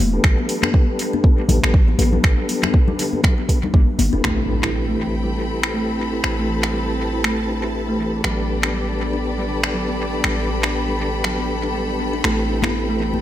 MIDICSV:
0, 0, Header, 1, 7, 480
1, 0, Start_track
1, 0, Key_signature, 0, "minor"
1, 0, Tempo, 500000
1, 230, Time_signature, 4, 2, 24, 8
1, 12685, End_track
2, 0, Start_track
2, 0, Title_t, "String section"
2, 0, Program_c, 0, 48
2, 4069, Note_on_c, 0, 83, 82
2, 4070, Note_on_c, 0, 79, 65
2, 4071, Note_on_c, 0, 60, 68
2, 4072, Note_on_c, 0, 69, 71
2, 5971, Note_off_c, 0, 79, 0
2, 5988, Note_on_c, 0, 81, 69
2, 7871, Note_off_c, 0, 83, 0
2, 7872, Note_off_c, 0, 60, 0
2, 7873, Note_off_c, 0, 69, 0
2, 7890, Note_off_c, 0, 81, 0
2, 7907, Note_on_c, 0, 69, 76
2, 7907, Note_on_c, 0, 74, 69
2, 7907, Note_on_c, 0, 83, 84
2, 7909, Note_on_c, 0, 79, 68
2, 11710, Note_off_c, 0, 74, 0
2, 11754, Note_on_c, 0, 60, 67
2, 12685, Note_off_c, 0, 60, 0
2, 12685, Note_off_c, 0, 69, 0
2, 12685, Note_off_c, 0, 79, 0
2, 12685, Note_off_c, 0, 83, 0
2, 12685, End_track
3, 0, Start_track
3, 0, Title_t, "Tonewheel organ"
3, 0, Program_c, 1, 16
3, 127, Note_on_c, 1, 59, 78
3, 127, Note_on_c, 1, 62, 75
3, 127, Note_on_c, 1, 67, 73
3, 127, Note_on_c, 1, 69, 73
3, 127, Note_on_c, 1, 71, 88
3, 1405, Note_off_c, 1, 59, 0
3, 1405, Note_off_c, 1, 62, 0
3, 1405, Note_off_c, 1, 67, 0
3, 1405, Note_off_c, 1, 69, 0
3, 1405, Note_off_c, 1, 71, 0
3, 1427, Note_on_c, 1, 69, 65
3, 1428, Note_on_c, 1, 59, 74
3, 1428, Note_on_c, 1, 71, 82
3, 1429, Note_on_c, 1, 62, 65
3, 1429, Note_on_c, 1, 67, 69
3, 1534, Note_off_c, 1, 59, 0
3, 1534, Note_off_c, 1, 62, 0
3, 1534, Note_off_c, 1, 67, 0
3, 1534, Note_off_c, 1, 69, 0
3, 1534, Note_off_c, 1, 71, 0
3, 1565, Note_on_c, 1, 62, 77
3, 1565, Note_on_c, 1, 67, 75
3, 1565, Note_on_c, 1, 69, 75
3, 1565, Note_on_c, 1, 71, 89
3, 1566, Note_on_c, 1, 59, 80
3, 1695, Note_off_c, 1, 59, 0
3, 1695, Note_off_c, 1, 62, 0
3, 1695, Note_off_c, 1, 67, 0
3, 1695, Note_off_c, 1, 69, 0
3, 1695, Note_off_c, 1, 71, 0
3, 1906, Note_on_c, 1, 62, 64
3, 1906, Note_on_c, 1, 67, 66
3, 1907, Note_on_c, 1, 59, 70
3, 1907, Note_on_c, 1, 69, 66
3, 1907, Note_on_c, 1, 71, 81
3, 3084, Note_off_c, 1, 59, 0
3, 3084, Note_off_c, 1, 62, 0
3, 3084, Note_off_c, 1, 67, 0
3, 3084, Note_off_c, 1, 69, 0
3, 3084, Note_off_c, 1, 71, 0
3, 3106, Note_on_c, 1, 59, 74
3, 3106, Note_on_c, 1, 69, 69
3, 3107, Note_on_c, 1, 62, 67
3, 3107, Note_on_c, 1, 67, 69
3, 3107, Note_on_c, 1, 71, 83
3, 3211, Note_off_c, 1, 59, 0
3, 3211, Note_off_c, 1, 62, 0
3, 3211, Note_off_c, 1, 67, 0
3, 3211, Note_off_c, 1, 69, 0
3, 3211, Note_off_c, 1, 71, 0
3, 3345, Note_on_c, 1, 59, 89
3, 3345, Note_on_c, 1, 62, 81
3, 3345, Note_on_c, 1, 67, 80
3, 3345, Note_on_c, 1, 69, 80
3, 3345, Note_on_c, 1, 71, 95
3, 3450, Note_off_c, 1, 59, 0
3, 3450, Note_off_c, 1, 62, 0
3, 3450, Note_off_c, 1, 69, 0
3, 3451, Note_off_c, 1, 67, 0
3, 3451, Note_off_c, 1, 71, 0
3, 3963, Note_on_c, 1, 60, 84
3, 3963, Note_on_c, 1, 64, 73
3, 3963, Note_on_c, 1, 67, 75
3, 3963, Note_on_c, 1, 71, 91
3, 3964, Note_on_c, 1, 69, 72
3, 4055, Note_off_c, 1, 60, 0
3, 4055, Note_off_c, 1, 64, 0
3, 4055, Note_off_c, 1, 67, 0
3, 4055, Note_off_c, 1, 71, 0
3, 4056, Note_off_c, 1, 69, 0
3, 4066, Note_on_c, 1, 64, 58
3, 4066, Note_on_c, 1, 67, 61
3, 4067, Note_on_c, 1, 60, 66
3, 4067, Note_on_c, 1, 69, 62
3, 4067, Note_on_c, 1, 71, 70
3, 7884, Note_off_c, 1, 60, 0
3, 7884, Note_off_c, 1, 64, 0
3, 7884, Note_off_c, 1, 67, 0
3, 7884, Note_off_c, 1, 69, 0
3, 7884, Note_off_c, 1, 71, 0
3, 7909, Note_on_c, 1, 62, 64
3, 7909, Note_on_c, 1, 67, 64
3, 7909, Note_on_c, 1, 69, 63
3, 7910, Note_on_c, 1, 59, 68
3, 7910, Note_on_c, 1, 71, 74
3, 11725, Note_off_c, 1, 62, 0
3, 11725, Note_off_c, 1, 67, 0
3, 11725, Note_off_c, 1, 69, 0
3, 11726, Note_off_c, 1, 59, 0
3, 11726, Note_off_c, 1, 71, 0
3, 11751, Note_on_c, 1, 60, 66
3, 11751, Note_on_c, 1, 64, 62
3, 11751, Note_on_c, 1, 67, 61
3, 11751, Note_on_c, 1, 69, 61
3, 11751, Note_on_c, 1, 71, 73
3, 12685, Note_off_c, 1, 60, 0
3, 12685, Note_off_c, 1, 64, 0
3, 12685, Note_off_c, 1, 67, 0
3, 12685, Note_off_c, 1, 69, 0
3, 12685, Note_off_c, 1, 71, 0
3, 12685, End_track
4, 0, Start_track
4, 0, Title_t, "Kalimba"
4, 0, Program_c, 2, 108
4, 231, Note_on_c, 2, 54, 81
4, 355, Note_off_c, 2, 54, 0
4, 369, Note_on_c, 2, 59, 77
4, 461, Note_off_c, 2, 59, 0
4, 611, Note_on_c, 2, 62, 72
4, 701, Note_off_c, 2, 62, 0
4, 710, Note_on_c, 2, 55, 80
4, 835, Note_off_c, 2, 55, 0
4, 951, Note_on_c, 2, 59, 75
4, 1082, Note_off_c, 2, 59, 0
4, 1088, Note_on_c, 2, 62, 97
4, 1185, Note_off_c, 2, 62, 0
4, 1330, Note_on_c, 2, 55, 73
4, 1421, Note_off_c, 2, 55, 0
4, 1429, Note_on_c, 2, 50, 77
4, 1504, Note_off_c, 2, 50, 0
4, 1670, Note_on_c, 2, 54, 81
4, 1794, Note_off_c, 2, 54, 0
4, 1807, Note_on_c, 2, 59, 75
4, 1900, Note_off_c, 2, 59, 0
4, 2046, Note_on_c, 2, 62, 75
4, 2139, Note_off_c, 2, 62, 0
4, 2146, Note_on_c, 2, 55, 82
4, 2272, Note_off_c, 2, 55, 0
4, 2385, Note_on_c, 2, 59, 73
4, 2519, Note_off_c, 2, 59, 0
4, 2525, Note_on_c, 2, 62, 99
4, 2623, Note_off_c, 2, 62, 0
4, 2765, Note_on_c, 2, 55, 74
4, 2858, Note_off_c, 2, 55, 0
4, 2868, Note_on_c, 2, 50, 75
4, 2943, Note_off_c, 2, 50, 0
4, 3105, Note_on_c, 2, 54, 81
4, 3232, Note_off_c, 2, 54, 0
4, 3245, Note_on_c, 2, 59, 73
4, 3338, Note_off_c, 2, 59, 0
4, 3485, Note_on_c, 2, 62, 76
4, 3579, Note_off_c, 2, 62, 0
4, 3589, Note_on_c, 2, 55, 80
4, 3714, Note_off_c, 2, 55, 0
4, 3828, Note_on_c, 2, 59, 77
4, 3960, Note_off_c, 2, 59, 0
4, 3963, Note_on_c, 2, 62, 98
4, 4063, Note_off_c, 2, 62, 0
4, 4067, Note_on_c, 2, 57, 71
4, 4193, Note_off_c, 2, 57, 0
4, 4309, Note_on_c, 2, 62, 68
4, 4441, Note_off_c, 2, 62, 0
4, 4446, Note_on_c, 2, 64, 88
4, 4544, Note_off_c, 2, 64, 0
4, 4686, Note_on_c, 2, 57, 68
4, 4779, Note_off_c, 2, 57, 0
4, 4789, Note_on_c, 2, 52, 66
4, 4864, Note_off_c, 2, 52, 0
4, 5027, Note_on_c, 2, 55, 73
4, 5153, Note_off_c, 2, 55, 0
4, 5167, Note_on_c, 2, 60, 65
4, 5259, Note_off_c, 2, 60, 0
4, 5408, Note_on_c, 2, 64, 69
4, 5500, Note_off_c, 2, 64, 0
4, 5510, Note_on_c, 2, 57, 71
4, 5635, Note_off_c, 2, 57, 0
4, 5750, Note_on_c, 2, 62, 69
4, 5881, Note_off_c, 2, 62, 0
4, 5886, Note_on_c, 2, 64, 93
4, 5984, Note_off_c, 2, 64, 0
4, 6127, Note_on_c, 2, 57, 69
4, 6219, Note_off_c, 2, 57, 0
4, 6229, Note_on_c, 2, 52, 66
4, 6304, Note_off_c, 2, 52, 0
4, 6469, Note_on_c, 2, 55, 74
4, 6594, Note_off_c, 2, 55, 0
4, 6606, Note_on_c, 2, 60, 71
4, 6699, Note_off_c, 2, 60, 0
4, 6847, Note_on_c, 2, 64, 70
4, 6940, Note_off_c, 2, 64, 0
4, 6948, Note_on_c, 2, 57, 76
4, 7074, Note_off_c, 2, 57, 0
4, 7189, Note_on_c, 2, 62, 70
4, 7321, Note_off_c, 2, 62, 0
4, 7330, Note_on_c, 2, 64, 95
4, 7426, Note_off_c, 2, 64, 0
4, 7568, Note_on_c, 2, 57, 68
4, 7660, Note_off_c, 2, 57, 0
4, 7670, Note_on_c, 2, 52, 70
4, 7745, Note_off_c, 2, 52, 0
4, 7911, Note_on_c, 2, 54, 73
4, 8035, Note_off_c, 2, 54, 0
4, 8051, Note_on_c, 2, 59, 70
4, 8141, Note_off_c, 2, 59, 0
4, 8288, Note_on_c, 2, 62, 69
4, 8380, Note_off_c, 2, 62, 0
4, 8390, Note_on_c, 2, 55, 75
4, 8514, Note_off_c, 2, 55, 0
4, 8630, Note_on_c, 2, 59, 68
4, 8761, Note_off_c, 2, 59, 0
4, 8768, Note_on_c, 2, 62, 87
4, 8865, Note_off_c, 2, 62, 0
4, 9008, Note_on_c, 2, 55, 68
4, 9100, Note_off_c, 2, 55, 0
4, 9109, Note_on_c, 2, 50, 70
4, 9184, Note_off_c, 2, 50, 0
4, 9349, Note_on_c, 2, 54, 74
4, 9474, Note_off_c, 2, 54, 0
4, 9486, Note_on_c, 2, 59, 67
4, 9579, Note_off_c, 2, 59, 0
4, 9728, Note_on_c, 2, 62, 68
4, 9820, Note_off_c, 2, 62, 0
4, 9829, Note_on_c, 2, 55, 73
4, 9954, Note_off_c, 2, 55, 0
4, 10068, Note_on_c, 2, 59, 69
4, 10200, Note_off_c, 2, 59, 0
4, 10208, Note_on_c, 2, 62, 92
4, 10305, Note_off_c, 2, 62, 0
4, 10447, Note_on_c, 2, 55, 69
4, 10539, Note_off_c, 2, 55, 0
4, 10550, Note_on_c, 2, 50, 70
4, 10625, Note_off_c, 2, 50, 0
4, 10790, Note_on_c, 2, 54, 73
4, 10915, Note_off_c, 2, 54, 0
4, 10927, Note_on_c, 2, 59, 66
4, 11020, Note_off_c, 2, 59, 0
4, 11168, Note_on_c, 2, 62, 71
4, 11260, Note_off_c, 2, 62, 0
4, 11270, Note_on_c, 2, 55, 71
4, 11395, Note_off_c, 2, 55, 0
4, 11511, Note_on_c, 2, 59, 70
4, 11642, Note_off_c, 2, 59, 0
4, 11649, Note_on_c, 2, 62, 92
4, 11746, Note_off_c, 2, 62, 0
4, 11753, Note_on_c, 2, 57, 73
4, 11876, Note_off_c, 2, 57, 0
4, 11993, Note_on_c, 2, 62, 68
4, 12123, Note_off_c, 2, 62, 0
4, 12129, Note_on_c, 2, 64, 90
4, 12226, Note_off_c, 2, 64, 0
4, 12370, Note_on_c, 2, 57, 71
4, 12461, Note_off_c, 2, 57, 0
4, 12474, Note_on_c, 2, 52, 67
4, 12547, Note_off_c, 2, 52, 0
4, 12685, End_track
5, 0, Start_track
5, 0, Title_t, "808-style bass"
5, 0, Program_c, 3, 38
5, 0, Note_on_c, 3, 28, 85
5, 184, Note_off_c, 3, 28, 0
5, 229, Note_on_c, 3, 33, 93
5, 337, Note_off_c, 3, 33, 0
5, 1426, Note_on_c, 3, 33, 99
5, 1535, Note_off_c, 3, 33, 0
5, 1566, Note_on_c, 3, 33, 101
5, 1872, Note_off_c, 3, 33, 0
5, 1908, Note_on_c, 3, 33, 88
5, 2103, Note_off_c, 3, 33, 0
5, 2149, Note_on_c, 3, 33, 97
5, 2256, Note_off_c, 3, 33, 0
5, 3588, Note_on_c, 3, 33, 101
5, 3696, Note_off_c, 3, 33, 0
5, 3827, Note_on_c, 3, 31, 102
5, 3935, Note_off_c, 3, 31, 0
5, 3967, Note_on_c, 3, 28, 84
5, 4046, Note_off_c, 3, 28, 0
5, 4070, Note_on_c, 3, 33, 82
5, 5970, Note_off_c, 3, 33, 0
5, 5989, Note_on_c, 3, 33, 83
5, 7889, Note_off_c, 3, 33, 0
5, 7911, Note_on_c, 3, 33, 86
5, 9810, Note_off_c, 3, 33, 0
5, 9829, Note_on_c, 3, 33, 82
5, 11729, Note_off_c, 3, 33, 0
5, 11751, Note_on_c, 3, 33, 84
5, 12685, Note_off_c, 3, 33, 0
5, 12685, End_track
6, 0, Start_track
6, 0, Title_t, "Impact"
6, 0, Program_c, 4, 103
6, 4068, Note_on_c, 4, 60, 65
6, 5989, Note_off_c, 4, 60, 0
6, 12685, End_track
7, 0, Start_track
7, 0, Title_t, "Drums"
7, 229, Note_on_c, 9, 26, 86
7, 229, Note_on_c, 9, 36, 108
7, 325, Note_off_c, 9, 26, 0
7, 325, Note_off_c, 9, 36, 0
7, 470, Note_on_c, 9, 46, 82
7, 566, Note_off_c, 9, 46, 0
7, 603, Note_on_c, 9, 63, 95
7, 608, Note_on_c, 9, 26, 85
7, 699, Note_off_c, 9, 63, 0
7, 704, Note_off_c, 9, 26, 0
7, 709, Note_on_c, 9, 36, 109
7, 805, Note_off_c, 9, 36, 0
7, 952, Note_on_c, 9, 46, 86
7, 1048, Note_off_c, 9, 46, 0
7, 1093, Note_on_c, 9, 63, 60
7, 1189, Note_off_c, 9, 63, 0
7, 1189, Note_on_c, 9, 36, 112
7, 1285, Note_off_c, 9, 36, 0
7, 1427, Note_on_c, 9, 64, 91
7, 1430, Note_on_c, 9, 46, 85
7, 1432, Note_on_c, 9, 63, 59
7, 1523, Note_off_c, 9, 64, 0
7, 1526, Note_off_c, 9, 46, 0
7, 1528, Note_off_c, 9, 63, 0
7, 1568, Note_on_c, 9, 63, 55
7, 1570, Note_on_c, 9, 26, 88
7, 1664, Note_off_c, 9, 63, 0
7, 1666, Note_off_c, 9, 26, 0
7, 1669, Note_on_c, 9, 36, 114
7, 1765, Note_off_c, 9, 36, 0
7, 1906, Note_on_c, 9, 63, 106
7, 1909, Note_on_c, 9, 46, 87
7, 2002, Note_off_c, 9, 63, 0
7, 2005, Note_off_c, 9, 46, 0
7, 2041, Note_on_c, 9, 64, 84
7, 2137, Note_off_c, 9, 64, 0
7, 2149, Note_on_c, 9, 36, 112
7, 2150, Note_on_c, 9, 26, 86
7, 2245, Note_off_c, 9, 36, 0
7, 2246, Note_off_c, 9, 26, 0
7, 2390, Note_on_c, 9, 46, 85
7, 2486, Note_off_c, 9, 46, 0
7, 2525, Note_on_c, 9, 64, 88
7, 2529, Note_on_c, 9, 26, 86
7, 2529, Note_on_c, 9, 63, 104
7, 2621, Note_off_c, 9, 64, 0
7, 2625, Note_off_c, 9, 26, 0
7, 2625, Note_off_c, 9, 63, 0
7, 2628, Note_on_c, 9, 36, 110
7, 2724, Note_off_c, 9, 36, 0
7, 2762, Note_on_c, 9, 64, 99
7, 2858, Note_off_c, 9, 64, 0
7, 2871, Note_on_c, 9, 46, 90
7, 2967, Note_off_c, 9, 46, 0
7, 3006, Note_on_c, 9, 63, 64
7, 3102, Note_off_c, 9, 63, 0
7, 3108, Note_on_c, 9, 36, 112
7, 3112, Note_on_c, 9, 26, 85
7, 3204, Note_off_c, 9, 36, 0
7, 3208, Note_off_c, 9, 26, 0
7, 3348, Note_on_c, 9, 36, 58
7, 3352, Note_on_c, 9, 46, 89
7, 3444, Note_off_c, 9, 36, 0
7, 3448, Note_off_c, 9, 46, 0
7, 3490, Note_on_c, 9, 64, 108
7, 3586, Note_off_c, 9, 64, 0
7, 3588, Note_on_c, 9, 36, 113
7, 3589, Note_on_c, 9, 63, 86
7, 3684, Note_off_c, 9, 36, 0
7, 3685, Note_off_c, 9, 63, 0
7, 3828, Note_on_c, 9, 63, 100
7, 3830, Note_on_c, 9, 46, 86
7, 3924, Note_off_c, 9, 63, 0
7, 3926, Note_off_c, 9, 46, 0
7, 4071, Note_on_c, 9, 26, 83
7, 4167, Note_off_c, 9, 26, 0
7, 4447, Note_on_c, 9, 26, 78
7, 4543, Note_off_c, 9, 26, 0
7, 5409, Note_on_c, 9, 26, 83
7, 5505, Note_off_c, 9, 26, 0
7, 5989, Note_on_c, 9, 26, 85
7, 6085, Note_off_c, 9, 26, 0
7, 6368, Note_on_c, 9, 26, 84
7, 6464, Note_off_c, 9, 26, 0
7, 6953, Note_on_c, 9, 26, 85
7, 7049, Note_off_c, 9, 26, 0
7, 7911, Note_on_c, 9, 26, 89
7, 8007, Note_off_c, 9, 26, 0
7, 8287, Note_on_c, 9, 26, 83
7, 8383, Note_off_c, 9, 26, 0
7, 9250, Note_on_c, 9, 26, 89
7, 9346, Note_off_c, 9, 26, 0
7, 9830, Note_on_c, 9, 26, 88
7, 9926, Note_off_c, 9, 26, 0
7, 10208, Note_on_c, 9, 26, 87
7, 10304, Note_off_c, 9, 26, 0
7, 10792, Note_on_c, 9, 26, 85
7, 10888, Note_off_c, 9, 26, 0
7, 11752, Note_on_c, 9, 26, 86
7, 11848, Note_off_c, 9, 26, 0
7, 12121, Note_on_c, 9, 63, 103
7, 12131, Note_on_c, 9, 26, 84
7, 12217, Note_off_c, 9, 63, 0
7, 12227, Note_off_c, 9, 26, 0
7, 12610, Note_on_c, 9, 63, 64
7, 12685, Note_off_c, 9, 63, 0
7, 12685, End_track
0, 0, End_of_file